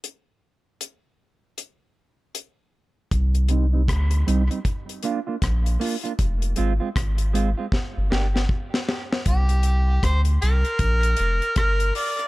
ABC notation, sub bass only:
X:1
M:4/4
L:1/16
Q:"Swing 16ths" 1/4=78
K:Cm
V:1 name="Sub bass" clef=bass
z16 | C,,4 D,,2 C,, z4 z B,,,2 z2 | F,,,2 A,,, z A,,,3 z2 G,,, G,,,2 z4 | C,,4 D,,2 C,, z B,,,2 F,,, z G,,,2 z2 |]